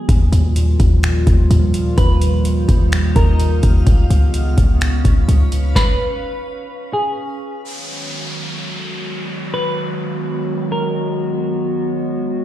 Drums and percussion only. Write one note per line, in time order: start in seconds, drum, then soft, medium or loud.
0.09 kick loud
0.09 closed hi-hat medium
0.33 closed hi-hat medium
0.56 closed hi-hat medium
0.80 kick medium
0.80 closed hi-hat medium
1.03 finger snap loud
1.03 closed hi-hat medium
1.27 kick medium
1.27 closed hi-hat medium
1.51 closed hi-hat medium
1.74 closed hi-hat medium
1.98 kick loud
1.98 closed hi-hat medium
2.21 closed hi-hat medium
2.45 closed hi-hat medium
2.69 kick medium
2.69 closed hi-hat medium
2.92 finger snap loud
2.92 closed hi-hat medium
3.16 kick medium
3.16 closed hi-hat medium
3.40 closed hi-hat medium
3.63 kick loud
3.63 closed hi-hat medium
3.87 kick loud
3.87 closed hi-hat medium
4.11 closed hi-hat medium
4.34 closed hi-hat medium
4.58 kick medium
4.58 closed hi-hat medium
4.81 finger snap loud
4.81 closed hi-hat medium
5.05 kick medium
5.05 closed hi-hat medium
5.29 closed hi-hat medium
5.52 closed hi-hat medium
5.76 kick loud
5.76 snare medium